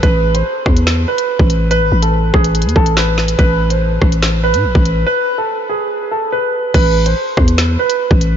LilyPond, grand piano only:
\new Staff \with { instrumentName = "Grand piano" } { \time 4/4 \key a \minor \tempo 4 = 143 b'8. c''4.~ c''16 b'4. | b'8. a'8. gis'4 a'8 b'4 | b'8. c''4.~ c''16 b'4. | b'8. a'8. gis'4 a'8 b'4 |
b'8. c''4.~ c''16 b'4. | }